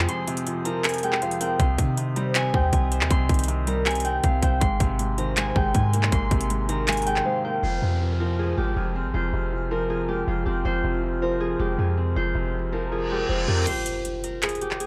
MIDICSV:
0, 0, Header, 1, 10, 480
1, 0, Start_track
1, 0, Key_signature, -4, "minor"
1, 0, Tempo, 377358
1, 109, Time_signature, 4, 2, 24, 8
1, 18910, End_track
2, 0, Start_track
2, 0, Title_t, "Flute section"
2, 0, Program_c, 0, 73
2, 0, Note_on_c, 0, 72, 85
2, 0, Note_on_c, 0, 80, 76
2, 0, Note_on_c, 0, 87, 96
2, 1980, Note_off_c, 0, 80, 0
2, 2032, Note_on_c, 0, 75, 78
2, 5481, Note_off_c, 0, 87, 0
2, 5509, Note_off_c, 0, 75, 0
2, 5552, Note_off_c, 0, 72, 0
2, 5872, Note_on_c, 0, 84, 95
2, 5873, Note_on_c, 0, 70, 84
2, 5873, Note_on_c, 0, 80, 76
2, 9673, Note_off_c, 0, 70, 0
2, 9673, Note_off_c, 0, 80, 0
2, 9673, Note_off_c, 0, 84, 0
2, 9710, Note_on_c, 0, 72, 83
2, 9710, Note_on_c, 0, 80, 76
2, 9710, Note_on_c, 0, 89, 91
2, 17339, Note_off_c, 0, 72, 0
2, 17339, Note_off_c, 0, 80, 0
2, 17339, Note_off_c, 0, 89, 0
2, 18910, End_track
3, 0, Start_track
3, 0, Title_t, "Harp"
3, 0, Program_c, 1, 46
3, 0, Note_on_c, 1, 80, 72
3, 0, Note_on_c, 1, 82, 85
3, 110, Note_on_c, 1, 84, 115
3, 694, Note_off_c, 1, 82, 0
3, 822, Note_on_c, 1, 82, 83
3, 1070, Note_off_c, 1, 80, 0
3, 1075, Note_on_c, 1, 80, 89
3, 1313, Note_on_c, 1, 79, 82
3, 1390, Note_off_c, 1, 80, 0
3, 1554, Note_on_c, 1, 77, 69
3, 1771, Note_off_c, 1, 84, 0
3, 1783, Note_off_c, 1, 79, 0
3, 1788, Note_on_c, 1, 79, 82
3, 2028, Note_on_c, 1, 84, 101
3, 2602, Note_off_c, 1, 82, 0
3, 2744, Note_on_c, 1, 82, 80
3, 2984, Note_on_c, 1, 80, 99
3, 3060, Note_off_c, 1, 79, 0
3, 3232, Note_on_c, 1, 79, 88
3, 3308, Note_off_c, 1, 80, 0
3, 3469, Note_on_c, 1, 80, 85
3, 3545, Note_off_c, 1, 79, 0
3, 3671, Note_off_c, 1, 77, 0
3, 3689, Note_off_c, 1, 84, 0
3, 3957, Note_on_c, 1, 84, 116
3, 4524, Note_off_c, 1, 82, 0
3, 4673, Note_on_c, 1, 82, 76
3, 4901, Note_off_c, 1, 80, 0
3, 4906, Note_on_c, 1, 80, 93
3, 5144, Note_on_c, 1, 79, 88
3, 5220, Note_off_c, 1, 80, 0
3, 5388, Note_on_c, 1, 77, 73
3, 5618, Note_off_c, 1, 84, 0
3, 5619, Note_off_c, 1, 79, 0
3, 5624, Note_on_c, 1, 79, 88
3, 5857, Note_on_c, 1, 84, 121
3, 6454, Note_off_c, 1, 82, 0
3, 6590, Note_on_c, 1, 82, 79
3, 6825, Note_on_c, 1, 80, 95
3, 6901, Note_off_c, 1, 79, 0
3, 7074, Note_on_c, 1, 79, 91
3, 7150, Note_off_c, 1, 80, 0
3, 7302, Note_on_c, 1, 80, 88
3, 7378, Note_off_c, 1, 79, 0
3, 7505, Note_off_c, 1, 77, 0
3, 7518, Note_off_c, 1, 84, 0
3, 7786, Note_on_c, 1, 84, 116
3, 8370, Note_off_c, 1, 82, 0
3, 8506, Note_on_c, 1, 82, 86
3, 8748, Note_off_c, 1, 80, 0
3, 8753, Note_on_c, 1, 80, 90
3, 8983, Note_on_c, 1, 79, 91
3, 9059, Note_off_c, 1, 80, 0
3, 9226, Note_on_c, 1, 77, 73
3, 9447, Note_off_c, 1, 84, 0
3, 9468, Note_off_c, 1, 79, 0
3, 9473, Note_on_c, 1, 79, 86
3, 9703, Note_on_c, 1, 72, 104
3, 10286, Note_off_c, 1, 82, 0
3, 10432, Note_on_c, 1, 70, 75
3, 10671, Note_on_c, 1, 68, 91
3, 10747, Note_off_c, 1, 79, 0
3, 10908, Note_on_c, 1, 67, 82
3, 10984, Note_off_c, 1, 68, 0
3, 11148, Note_on_c, 1, 68, 73
3, 11224, Note_off_c, 1, 67, 0
3, 11343, Note_off_c, 1, 77, 0
3, 11620, Note_off_c, 1, 72, 0
3, 11626, Note_on_c, 1, 72, 100
3, 12349, Note_off_c, 1, 70, 0
3, 12354, Note_on_c, 1, 70, 70
3, 12584, Note_off_c, 1, 68, 0
3, 12590, Note_on_c, 1, 68, 84
3, 12826, Note_on_c, 1, 67, 77
3, 12903, Note_off_c, 1, 68, 0
3, 13072, Note_on_c, 1, 65, 68
3, 13295, Note_off_c, 1, 67, 0
3, 13300, Note_on_c, 1, 67, 76
3, 13542, Note_off_c, 1, 72, 0
3, 13547, Note_on_c, 1, 72, 111
3, 14269, Note_off_c, 1, 70, 0
3, 14274, Note_on_c, 1, 70, 85
3, 14504, Note_on_c, 1, 68, 96
3, 14580, Note_off_c, 1, 67, 0
3, 14750, Note_on_c, 1, 67, 79
3, 14826, Note_off_c, 1, 68, 0
3, 14994, Note_on_c, 1, 68, 69
3, 15070, Note_off_c, 1, 67, 0
3, 15466, Note_off_c, 1, 72, 0
3, 15471, Note_on_c, 1, 72, 113
3, 16179, Note_off_c, 1, 70, 0
3, 16184, Note_on_c, 1, 70, 80
3, 16281, Note_off_c, 1, 65, 0
3, 16428, Note_off_c, 1, 68, 0
3, 16433, Note_on_c, 1, 68, 81
3, 16672, Note_on_c, 1, 67, 78
3, 16748, Note_off_c, 1, 68, 0
3, 16913, Note_on_c, 1, 65, 70
3, 17141, Note_off_c, 1, 67, 0
3, 17146, Note_on_c, 1, 67, 79
3, 17380, Note_off_c, 1, 72, 0
3, 17385, Note_on_c, 1, 72, 107
3, 18107, Note_off_c, 1, 70, 0
3, 18112, Note_on_c, 1, 70, 75
3, 18354, Note_on_c, 1, 68, 102
3, 18431, Note_off_c, 1, 67, 0
3, 18589, Note_on_c, 1, 67, 81
3, 18665, Note_off_c, 1, 68, 0
3, 18829, Note_on_c, 1, 68, 76
3, 18906, Note_off_c, 1, 67, 0
3, 18910, Note_off_c, 1, 65, 0
3, 18910, Note_off_c, 1, 68, 0
3, 18910, Note_off_c, 1, 70, 0
3, 18910, Note_off_c, 1, 72, 0
3, 18910, End_track
4, 0, Start_track
4, 0, Title_t, "Soft synth lead"
4, 0, Program_c, 2, 80
4, 830, Note_on_c, 2, 70, 89
4, 1507, Note_off_c, 2, 70, 0
4, 1549, Note_on_c, 2, 72, 90
4, 1777, Note_off_c, 2, 72, 0
4, 1790, Note_on_c, 2, 70, 86
4, 2018, Note_off_c, 2, 70, 0
4, 2750, Note_on_c, 2, 72, 80
4, 3427, Note_off_c, 2, 72, 0
4, 4671, Note_on_c, 2, 70, 84
4, 5347, Note_off_c, 2, 70, 0
4, 6589, Note_on_c, 2, 72, 90
4, 7266, Note_off_c, 2, 72, 0
4, 8509, Note_on_c, 2, 70, 81
4, 9187, Note_off_c, 2, 70, 0
4, 9228, Note_on_c, 2, 72, 93
4, 9457, Note_off_c, 2, 72, 0
4, 9468, Note_on_c, 2, 70, 84
4, 9697, Note_off_c, 2, 70, 0
4, 10430, Note_on_c, 2, 72, 75
4, 11107, Note_off_c, 2, 72, 0
4, 12349, Note_on_c, 2, 70, 85
4, 13026, Note_off_c, 2, 70, 0
4, 14269, Note_on_c, 2, 72, 92
4, 14946, Note_off_c, 2, 72, 0
4, 16187, Note_on_c, 2, 70, 87
4, 16865, Note_off_c, 2, 70, 0
4, 16909, Note_on_c, 2, 72, 85
4, 17137, Note_off_c, 2, 72, 0
4, 17148, Note_on_c, 2, 70, 87
4, 17377, Note_off_c, 2, 70, 0
4, 18910, End_track
5, 0, Start_track
5, 0, Title_t, "Felt piano"
5, 0, Program_c, 3, 0
5, 0, Control_c, 3, 64, 127
5, 0, Note_on_c, 3, 41, 89
5, 0, Note_on_c, 3, 48, 84
5, 0, Note_on_c, 3, 53, 94
5, 0, Note_on_c, 3, 56, 93
5, 0, Note_on_c, 3, 60, 86
5, 113, Note_off_c, 3, 41, 0
5, 113, Note_on_c, 3, 41, 88
5, 351, Note_off_c, 3, 48, 0
5, 351, Note_on_c, 3, 48, 85
5, 575, Note_off_c, 3, 41, 0
5, 590, Note_off_c, 3, 56, 0
5, 594, Note_on_c, 3, 41, 76
5, 832, Note_off_c, 3, 53, 0
5, 832, Note_on_c, 3, 53, 98
5, 1055, Note_off_c, 3, 41, 0
5, 1072, Note_off_c, 3, 60, 0
5, 1074, Note_on_c, 3, 41, 78
5, 1311, Note_on_c, 3, 56, 85
5, 1531, Note_off_c, 3, 41, 0
5, 1551, Note_off_c, 3, 48, 0
5, 1551, Note_on_c, 3, 41, 87
5, 1792, Note_on_c, 3, 60, 88
5, 2030, Note_off_c, 3, 41, 0
5, 2030, Note_off_c, 3, 56, 0
5, 2030, Note_on_c, 3, 48, 85
5, 2031, Note_off_c, 3, 53, 0
5, 2031, Note_off_c, 3, 60, 0
5, 2049, Control_c, 3, 64, 0
5, 2272, Note_on_c, 3, 51, 75
5, 2298, Control_c, 3, 64, 127
5, 2491, Note_off_c, 3, 48, 0
5, 2511, Note_on_c, 3, 48, 77
5, 2752, Note_on_c, 3, 55, 94
5, 2970, Note_off_c, 3, 48, 0
5, 2989, Note_on_c, 3, 48, 76
5, 3227, Note_on_c, 3, 60, 86
5, 3450, Note_off_c, 3, 48, 0
5, 3469, Note_on_c, 3, 48, 79
5, 3471, Note_off_c, 3, 51, 0
5, 3710, Note_on_c, 3, 72, 95
5, 3928, Note_off_c, 3, 48, 0
5, 3947, Note_on_c, 3, 48, 90
5, 3951, Note_off_c, 3, 55, 0
5, 4188, Note_on_c, 3, 51, 79
5, 4408, Note_off_c, 3, 48, 0
5, 4427, Note_on_c, 3, 48, 77
5, 4429, Note_off_c, 3, 60, 0
5, 4667, Note_on_c, 3, 55, 90
5, 4890, Note_off_c, 3, 48, 0
5, 4909, Note_on_c, 3, 48, 75
5, 4910, Note_off_c, 3, 72, 0
5, 5148, Note_on_c, 3, 60, 83
5, 5371, Note_off_c, 3, 48, 0
5, 5389, Note_off_c, 3, 51, 0
5, 5390, Note_on_c, 3, 48, 86
5, 5628, Note_on_c, 3, 72, 93
5, 5867, Note_on_c, 3, 44, 96
5, 5869, Note_off_c, 3, 55, 0
5, 5869, Note_off_c, 3, 60, 0
5, 5869, Note_off_c, 3, 72, 0
5, 5870, Note_off_c, 3, 48, 0
5, 5884, Control_c, 3, 64, 0
5, 6089, Control_c, 3, 64, 127
5, 6109, Note_on_c, 3, 48, 84
5, 6330, Note_off_c, 3, 44, 0
5, 6349, Note_on_c, 3, 44, 77
5, 6589, Note_on_c, 3, 51, 85
5, 6811, Note_off_c, 3, 44, 0
5, 6830, Note_on_c, 3, 44, 80
5, 7069, Note_on_c, 3, 56, 93
5, 7290, Note_off_c, 3, 44, 0
5, 7309, Note_off_c, 3, 48, 0
5, 7309, Note_on_c, 3, 44, 84
5, 7549, Note_on_c, 3, 58, 90
5, 7771, Note_off_c, 3, 44, 0
5, 7789, Note_off_c, 3, 51, 0
5, 7790, Note_on_c, 3, 44, 93
5, 8031, Note_on_c, 3, 48, 81
5, 8251, Note_off_c, 3, 44, 0
5, 8269, Note_off_c, 3, 56, 0
5, 8270, Note_on_c, 3, 44, 75
5, 8510, Note_on_c, 3, 51, 98
5, 8730, Note_off_c, 3, 44, 0
5, 8749, Note_off_c, 3, 58, 0
5, 8749, Note_on_c, 3, 44, 68
5, 8989, Note_on_c, 3, 56, 88
5, 9211, Note_off_c, 3, 44, 0
5, 9230, Note_on_c, 3, 44, 82
5, 9231, Note_off_c, 3, 48, 0
5, 9470, Note_on_c, 3, 58, 82
5, 9708, Note_on_c, 3, 41, 83
5, 9709, Note_off_c, 3, 56, 0
5, 9710, Note_off_c, 3, 44, 0
5, 9710, Note_off_c, 3, 51, 0
5, 9710, Note_off_c, 3, 58, 0
5, 9724, Control_c, 3, 64, 0
5, 9950, Note_on_c, 3, 48, 65
5, 9962, Control_c, 3, 64, 127
5, 10171, Note_off_c, 3, 41, 0
5, 10190, Note_on_c, 3, 41, 66
5, 10430, Note_on_c, 3, 53, 90
5, 10652, Note_off_c, 3, 41, 0
5, 10671, Note_on_c, 3, 41, 70
5, 10911, Note_on_c, 3, 56, 79
5, 11133, Note_off_c, 3, 41, 0
5, 11150, Note_off_c, 3, 48, 0
5, 11152, Note_on_c, 3, 41, 88
5, 11390, Note_on_c, 3, 60, 85
5, 11612, Note_off_c, 3, 41, 0
5, 11630, Note_off_c, 3, 53, 0
5, 11631, Note_on_c, 3, 41, 88
5, 11872, Note_on_c, 3, 48, 76
5, 12090, Note_off_c, 3, 41, 0
5, 12109, Note_on_c, 3, 41, 67
5, 12111, Note_off_c, 3, 56, 0
5, 12350, Note_on_c, 3, 53, 93
5, 12571, Note_off_c, 3, 41, 0
5, 12590, Note_off_c, 3, 60, 0
5, 12590, Note_on_c, 3, 41, 74
5, 12830, Note_on_c, 3, 56, 82
5, 13052, Note_off_c, 3, 41, 0
5, 13071, Note_off_c, 3, 48, 0
5, 13071, Note_on_c, 3, 41, 87
5, 13309, Note_on_c, 3, 60, 89
5, 13532, Note_off_c, 3, 41, 0
5, 13550, Note_off_c, 3, 53, 0
5, 13551, Note_on_c, 3, 41, 91
5, 13789, Note_on_c, 3, 48, 76
5, 14010, Note_off_c, 3, 41, 0
5, 14029, Note_on_c, 3, 41, 71
5, 14030, Note_off_c, 3, 56, 0
5, 14270, Note_on_c, 3, 53, 89
5, 14492, Note_off_c, 3, 41, 0
5, 14509, Note_off_c, 3, 60, 0
5, 14511, Note_on_c, 3, 41, 78
5, 14747, Note_on_c, 3, 56, 90
5, 14968, Note_off_c, 3, 41, 0
5, 14987, Note_on_c, 3, 41, 85
5, 14989, Note_off_c, 3, 48, 0
5, 15230, Note_on_c, 3, 60, 81
5, 15450, Note_off_c, 3, 41, 0
5, 15469, Note_on_c, 3, 41, 88
5, 15470, Note_off_c, 3, 53, 0
5, 15707, Note_on_c, 3, 48, 80
5, 15930, Note_off_c, 3, 41, 0
5, 15948, Note_off_c, 3, 56, 0
5, 15949, Note_on_c, 3, 41, 72
5, 16187, Note_on_c, 3, 53, 94
5, 16410, Note_off_c, 3, 41, 0
5, 16429, Note_on_c, 3, 41, 77
5, 16430, Note_off_c, 3, 60, 0
5, 16667, Note_on_c, 3, 56, 82
5, 16888, Note_off_c, 3, 41, 0
5, 16907, Note_on_c, 3, 41, 88
5, 16908, Note_off_c, 3, 48, 0
5, 17149, Note_on_c, 3, 60, 84
5, 17388, Note_off_c, 3, 56, 0
5, 17389, Note_off_c, 3, 41, 0
5, 17389, Note_off_c, 3, 53, 0
5, 17389, Note_off_c, 3, 60, 0
5, 17408, Control_c, 3, 64, 0
5, 17634, Control_c, 3, 64, 127
5, 18910, End_track
6, 0, Start_track
6, 0, Title_t, "808-style bass"
6, 0, Program_c, 4, 38
6, 2030, Note_on_c, 4, 36, 115
6, 2260, Note_off_c, 4, 36, 0
6, 2270, Note_on_c, 4, 48, 107
6, 3191, Note_off_c, 4, 48, 0
6, 3230, Note_on_c, 4, 39, 110
6, 3460, Note_off_c, 4, 39, 0
6, 3470, Note_on_c, 4, 36, 104
6, 3830, Note_on_c, 4, 39, 96
6, 3849, Note_off_c, 4, 36, 0
6, 3944, Note_off_c, 4, 39, 0
6, 3950, Note_on_c, 4, 36, 111
6, 4181, Note_off_c, 4, 36, 0
6, 4190, Note_on_c, 4, 36, 108
6, 5342, Note_off_c, 4, 36, 0
6, 5390, Note_on_c, 4, 36, 108
6, 5620, Note_off_c, 4, 36, 0
6, 5629, Note_on_c, 4, 36, 107
6, 5860, Note_off_c, 4, 36, 0
6, 5870, Note_on_c, 4, 32, 113
6, 6100, Note_off_c, 4, 32, 0
6, 6109, Note_on_c, 4, 32, 110
6, 7031, Note_off_c, 4, 32, 0
6, 7069, Note_on_c, 4, 32, 110
6, 7300, Note_off_c, 4, 32, 0
6, 7309, Note_on_c, 4, 44, 109
6, 7770, Note_off_c, 4, 44, 0
6, 7789, Note_on_c, 4, 32, 110
6, 8020, Note_off_c, 4, 32, 0
6, 8028, Note_on_c, 4, 32, 109
6, 9181, Note_off_c, 4, 32, 0
6, 9709, Note_on_c, 4, 29, 113
6, 9940, Note_off_c, 4, 29, 0
6, 9949, Note_on_c, 4, 41, 107
6, 10871, Note_off_c, 4, 41, 0
6, 10910, Note_on_c, 4, 32, 104
6, 11141, Note_off_c, 4, 32, 0
6, 11151, Note_on_c, 4, 29, 105
6, 11511, Note_on_c, 4, 32, 96
6, 11530, Note_off_c, 4, 29, 0
6, 11624, Note_off_c, 4, 32, 0
6, 11631, Note_on_c, 4, 29, 108
6, 11861, Note_off_c, 4, 29, 0
6, 11872, Note_on_c, 4, 29, 103
6, 13023, Note_off_c, 4, 29, 0
6, 13072, Note_on_c, 4, 29, 106
6, 13301, Note_off_c, 4, 29, 0
6, 13311, Note_on_c, 4, 29, 99
6, 13541, Note_off_c, 4, 29, 0
6, 13551, Note_on_c, 4, 29, 112
6, 13781, Note_off_c, 4, 29, 0
6, 13790, Note_on_c, 4, 29, 105
6, 14711, Note_off_c, 4, 29, 0
6, 14750, Note_on_c, 4, 29, 100
6, 14980, Note_off_c, 4, 29, 0
6, 14990, Note_on_c, 4, 41, 102
6, 15451, Note_off_c, 4, 41, 0
6, 15469, Note_on_c, 4, 29, 113
6, 15700, Note_off_c, 4, 29, 0
6, 15709, Note_on_c, 4, 29, 103
6, 16862, Note_off_c, 4, 29, 0
6, 16909, Note_on_c, 4, 29, 105
6, 17140, Note_off_c, 4, 29, 0
6, 17149, Note_on_c, 4, 41, 105
6, 17380, Note_off_c, 4, 41, 0
6, 18910, End_track
7, 0, Start_track
7, 0, Title_t, "Downlifter"
7, 0, Program_c, 5, 103
7, 9709, Note_on_c, 5, 60, 83
7, 13549, Note_off_c, 5, 60, 0
7, 18910, End_track
8, 0, Start_track
8, 0, Title_t, "Impact"
8, 0, Program_c, 6, 103
8, 17388, Note_on_c, 6, 60, 82
8, 18910, Note_off_c, 6, 60, 0
8, 18910, End_track
9, 0, Start_track
9, 0, Title_t, "Reverse cymbal"
9, 0, Program_c, 7, 119
9, 16428, Note_on_c, 7, 60, 86
9, 17389, Note_off_c, 7, 60, 0
9, 18910, End_track
10, 0, Start_track
10, 0, Title_t, "Drums"
10, 110, Note_on_c, 9, 42, 81
10, 237, Note_off_c, 9, 42, 0
10, 350, Note_on_c, 9, 46, 95
10, 351, Note_on_c, 9, 42, 74
10, 471, Note_off_c, 9, 42, 0
10, 471, Note_on_c, 9, 42, 73
10, 477, Note_off_c, 9, 46, 0
10, 592, Note_off_c, 9, 42, 0
10, 592, Note_on_c, 9, 42, 82
10, 720, Note_off_c, 9, 42, 0
10, 831, Note_on_c, 9, 42, 77
10, 958, Note_off_c, 9, 42, 0
10, 1071, Note_on_c, 9, 39, 125
10, 1071, Note_on_c, 9, 42, 67
10, 1131, Note_off_c, 9, 42, 0
10, 1131, Note_on_c, 9, 42, 68
10, 1191, Note_off_c, 9, 42, 0
10, 1191, Note_on_c, 9, 42, 66
10, 1199, Note_off_c, 9, 39, 0
10, 1251, Note_off_c, 9, 42, 0
10, 1251, Note_on_c, 9, 42, 67
10, 1311, Note_off_c, 9, 42, 0
10, 1311, Note_on_c, 9, 42, 81
10, 1432, Note_on_c, 9, 39, 68
10, 1438, Note_off_c, 9, 42, 0
10, 1551, Note_on_c, 9, 42, 65
10, 1559, Note_off_c, 9, 39, 0
10, 1671, Note_off_c, 9, 42, 0
10, 1671, Note_on_c, 9, 42, 66
10, 1790, Note_off_c, 9, 42, 0
10, 1790, Note_on_c, 9, 42, 92
10, 1918, Note_off_c, 9, 42, 0
10, 2030, Note_on_c, 9, 36, 116
10, 2030, Note_on_c, 9, 42, 80
10, 2157, Note_off_c, 9, 36, 0
10, 2157, Note_off_c, 9, 42, 0
10, 2270, Note_on_c, 9, 36, 97
10, 2270, Note_on_c, 9, 42, 86
10, 2397, Note_off_c, 9, 36, 0
10, 2397, Note_off_c, 9, 42, 0
10, 2512, Note_on_c, 9, 42, 80
10, 2639, Note_off_c, 9, 42, 0
10, 2751, Note_on_c, 9, 42, 78
10, 2878, Note_off_c, 9, 42, 0
10, 2990, Note_on_c, 9, 42, 79
10, 2991, Note_on_c, 9, 39, 122
10, 3117, Note_off_c, 9, 42, 0
10, 3118, Note_off_c, 9, 39, 0
10, 3231, Note_on_c, 9, 36, 101
10, 3358, Note_off_c, 9, 36, 0
10, 3469, Note_on_c, 9, 42, 79
10, 3470, Note_on_c, 9, 36, 88
10, 3596, Note_off_c, 9, 42, 0
10, 3597, Note_off_c, 9, 36, 0
10, 3710, Note_on_c, 9, 42, 82
10, 3831, Note_on_c, 9, 39, 92
10, 3838, Note_off_c, 9, 42, 0
10, 3950, Note_on_c, 9, 36, 117
10, 3950, Note_on_c, 9, 42, 80
10, 3958, Note_off_c, 9, 39, 0
10, 4077, Note_off_c, 9, 36, 0
10, 4077, Note_off_c, 9, 42, 0
10, 4189, Note_on_c, 9, 46, 92
10, 4190, Note_on_c, 9, 36, 93
10, 4190, Note_on_c, 9, 42, 53
10, 4251, Note_off_c, 9, 42, 0
10, 4251, Note_on_c, 9, 42, 62
10, 4310, Note_off_c, 9, 42, 0
10, 4310, Note_on_c, 9, 42, 79
10, 4317, Note_off_c, 9, 36, 0
10, 4317, Note_off_c, 9, 46, 0
10, 4370, Note_off_c, 9, 42, 0
10, 4370, Note_on_c, 9, 42, 86
10, 4431, Note_off_c, 9, 42, 0
10, 4431, Note_on_c, 9, 42, 82
10, 4558, Note_off_c, 9, 42, 0
10, 4670, Note_on_c, 9, 42, 76
10, 4797, Note_off_c, 9, 42, 0
10, 4910, Note_on_c, 9, 39, 124
10, 4910, Note_on_c, 9, 42, 49
10, 4969, Note_off_c, 9, 42, 0
10, 4969, Note_on_c, 9, 42, 61
10, 5029, Note_off_c, 9, 42, 0
10, 5029, Note_on_c, 9, 42, 69
10, 5037, Note_off_c, 9, 39, 0
10, 5089, Note_off_c, 9, 42, 0
10, 5089, Note_on_c, 9, 42, 81
10, 5149, Note_off_c, 9, 42, 0
10, 5149, Note_on_c, 9, 42, 81
10, 5276, Note_off_c, 9, 42, 0
10, 5387, Note_on_c, 9, 42, 79
10, 5389, Note_on_c, 9, 36, 90
10, 5515, Note_off_c, 9, 42, 0
10, 5517, Note_off_c, 9, 36, 0
10, 5629, Note_on_c, 9, 36, 90
10, 5629, Note_on_c, 9, 42, 91
10, 5756, Note_off_c, 9, 36, 0
10, 5756, Note_off_c, 9, 42, 0
10, 5869, Note_on_c, 9, 36, 123
10, 5869, Note_on_c, 9, 42, 78
10, 5996, Note_off_c, 9, 36, 0
10, 5996, Note_off_c, 9, 42, 0
10, 6108, Note_on_c, 9, 42, 82
10, 6109, Note_on_c, 9, 36, 95
10, 6235, Note_off_c, 9, 42, 0
10, 6236, Note_off_c, 9, 36, 0
10, 6350, Note_on_c, 9, 42, 82
10, 6478, Note_off_c, 9, 42, 0
10, 6589, Note_on_c, 9, 42, 75
10, 6717, Note_off_c, 9, 42, 0
10, 6829, Note_on_c, 9, 39, 125
10, 6829, Note_on_c, 9, 42, 78
10, 6956, Note_off_c, 9, 42, 0
10, 6957, Note_off_c, 9, 39, 0
10, 7069, Note_on_c, 9, 36, 96
10, 7197, Note_off_c, 9, 36, 0
10, 7307, Note_on_c, 9, 42, 78
10, 7309, Note_on_c, 9, 36, 89
10, 7435, Note_off_c, 9, 42, 0
10, 7436, Note_off_c, 9, 36, 0
10, 7549, Note_on_c, 9, 42, 88
10, 7669, Note_on_c, 9, 39, 93
10, 7676, Note_off_c, 9, 42, 0
10, 7788, Note_on_c, 9, 42, 76
10, 7789, Note_on_c, 9, 36, 117
10, 7796, Note_off_c, 9, 39, 0
10, 7915, Note_off_c, 9, 42, 0
10, 7916, Note_off_c, 9, 36, 0
10, 8028, Note_on_c, 9, 42, 71
10, 8028, Note_on_c, 9, 46, 89
10, 8029, Note_on_c, 9, 36, 97
10, 8148, Note_off_c, 9, 42, 0
10, 8148, Note_on_c, 9, 42, 73
10, 8155, Note_off_c, 9, 46, 0
10, 8156, Note_off_c, 9, 36, 0
10, 8270, Note_off_c, 9, 42, 0
10, 8270, Note_on_c, 9, 42, 81
10, 8397, Note_off_c, 9, 42, 0
10, 8508, Note_on_c, 9, 42, 76
10, 8635, Note_off_c, 9, 42, 0
10, 8748, Note_on_c, 9, 42, 67
10, 8749, Note_on_c, 9, 39, 124
10, 8808, Note_off_c, 9, 42, 0
10, 8808, Note_on_c, 9, 42, 66
10, 8869, Note_off_c, 9, 42, 0
10, 8869, Note_on_c, 9, 42, 66
10, 8876, Note_off_c, 9, 39, 0
10, 8929, Note_off_c, 9, 42, 0
10, 8929, Note_on_c, 9, 42, 66
10, 8989, Note_off_c, 9, 42, 0
10, 8989, Note_on_c, 9, 42, 78
10, 9110, Note_on_c, 9, 39, 69
10, 9116, Note_off_c, 9, 42, 0
10, 9237, Note_off_c, 9, 39, 0
10, 17388, Note_on_c, 9, 42, 76
10, 17388, Note_on_c, 9, 49, 92
10, 17515, Note_off_c, 9, 42, 0
10, 17515, Note_off_c, 9, 49, 0
10, 17629, Note_on_c, 9, 42, 89
10, 17756, Note_off_c, 9, 42, 0
10, 17871, Note_on_c, 9, 42, 73
10, 17998, Note_off_c, 9, 42, 0
10, 18110, Note_on_c, 9, 42, 73
10, 18237, Note_off_c, 9, 42, 0
10, 18349, Note_on_c, 9, 42, 78
10, 18350, Note_on_c, 9, 39, 122
10, 18430, Note_off_c, 9, 42, 0
10, 18430, Note_on_c, 9, 42, 64
10, 18477, Note_off_c, 9, 39, 0
10, 18509, Note_off_c, 9, 42, 0
10, 18509, Note_on_c, 9, 42, 46
10, 18590, Note_off_c, 9, 42, 0
10, 18590, Note_on_c, 9, 42, 76
10, 18711, Note_on_c, 9, 39, 66
10, 18717, Note_off_c, 9, 42, 0
10, 18829, Note_on_c, 9, 42, 74
10, 18838, Note_off_c, 9, 39, 0
10, 18910, Note_off_c, 9, 42, 0
10, 18910, End_track
0, 0, End_of_file